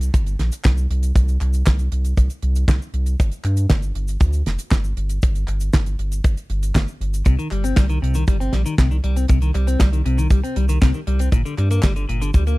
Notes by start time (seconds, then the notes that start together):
Already playing: C2
0.01 closed hi-hat, cabasa
0.14 G1, kick, closed hi-hat, cabasa
0.27 closed hi-hat, cabasa
0.39 A#1, snare, closed hi-hat
0.52 closed hi-hat, cabasa
0.64 C2, kick, snare, clap, closed hi-hat, cabasa
0.78 cabasa
0.90 C2, closed hi-hat
1.03 closed hi-hat, cabasa
1.16 C2, kick, closed hi-hat, cabasa
1.28 closed hi-hat, cabasa
1.41 C2, clap, closed hi-hat
1.53 closed hi-hat, cabasa
1.66 C2, kick, snare, clap, closed hi-hat, cabasa
1.79 closed hi-hat, cabasa
1.92 C2, closed hi-hat
2.05 closed hi-hat, cabasa
2.17 C2, kick, closed hi-hat, cabasa
2.30 closed hi-hat, cabasa
2.42 C2, closed hi-hat
2.55 closed hi-hat, cabasa
2.68 C2, kick, snare, clap, closed hi-hat, cabasa
2.82 cabasa
2.94 C2, closed hi-hat
3.06 closed hi-hat, cabasa
3.20 G1, kick, closed hi-hat, cabasa
3.31 closed hi-hat, cabasa
3.44 G2, clap, closed hi-hat
3.57 closed hi-hat, cabasa
3.70 G1, kick, snare, clap, closed hi-hat, cabasa
3.82 closed hi-hat, cabasa
3.95 G1, closed hi-hat
4.08 closed hi-hat, cabasa
4.20 D2, kick, closed hi-hat, cabasa
4.33 closed hi-hat, cabasa
4.46 F1, snare, closed hi-hat
4.59 closed hi-hat, cabasa
4.71 G1, kick, snare, clap, closed hi-hat, cabasa
4.84 cabasa
4.97 G1, closed hi-hat
5.09 closed hi-hat, cabasa
5.22 G1, kick, closed hi-hat, cabasa
5.35 closed hi-hat, cabasa
5.48 G1, clap, closed hi-hat
5.60 closed hi-hat, cabasa
5.73 G1, kick, snare, clap, closed hi-hat, cabasa
5.86 closed hi-hat, cabasa
5.99 G1, closed hi-hat
6.12 closed hi-hat, cabasa
6.24 G1, kick, closed hi-hat, cabasa
6.37 closed hi-hat, cabasa
6.50 G1, closed hi-hat
6.63 closed hi-hat, cabasa
6.75 G1, kick, snare, clap, closed hi-hat, cabasa
6.88 cabasa
7.01 G1, closed hi-hat
7.14 closed hi-hat, cabasa
7.25 C2 C3, kick, closed hi-hat, cabasa
7.39 D#3, closed hi-hat, cabasa
7.51 G1 G3, clap, closed hi-hat
7.64 C4, closed hi-hat, cabasa
7.76 C2 G3, kick, snare, clap, closed hi-hat, cabasa
7.89 D#3, closed hi-hat, cabasa
8.02 C2 C3, closed hi-hat
8.14 D#3, closed hi-hat, cabasa
8.27 G1 G3, kick, closed hi-hat, cabasa
8.40 C4, closed hi-hat, cabasa
8.53 A#1 G3, snare, closed hi-hat
8.66 D#3, closed hi-hat, cabasa
8.78 C2 C3, kick, snare, clap, closed hi-hat, cabasa
8.91 D#3, cabasa
9.04 C2 G3, closed hi-hat
9.16 C4, closed hi-hat, cabasa
9.28 C2 C3, kick, closed hi-hat, cabasa
9.42 D#3, closed hi-hat, cabasa
9.55 C2 G3, clap, closed hi-hat
9.67 C4, closed hi-hat, cabasa
9.80 C2 G3, kick, snare, clap, closed hi-hat, cabasa
9.93 D#3, closed hi-hat, cabasa
10.05 C2 C3, closed hi-hat
10.18 D#3, closed hi-hat, cabasa
10.30 C2 G3, kick, closed hi-hat, cabasa
10.44 C4, closed hi-hat, cabasa
10.56 C2 G3, closed hi-hat
10.69 D#3, closed hi-hat, cabasa
10.82 C2 C3, kick, snare, clap, closed hi-hat, cabasa
10.94 D#3, cabasa
11.07 C2 G3, closed hi-hat
11.19 C4, closed hi-hat, cabasa
11.32 G1 A#2, kick, closed hi-hat, cabasa
11.45 D3, closed hi-hat, cabasa
11.58 G2 G3, clap, closed hi-hat
11.71 A#3, closed hi-hat, cabasa
11.82 G1 G3, kick, snare, clap, closed hi-hat, cabasa
11.96 D3, closed hi-hat, cabasa
12.09 G1 A#2, closed hi-hat
12.22 D3, closed hi-hat, cabasa
12.34 D2 G3, kick, closed hi-hat, cabasa
12.47 A#3, closed hi-hat, cabasa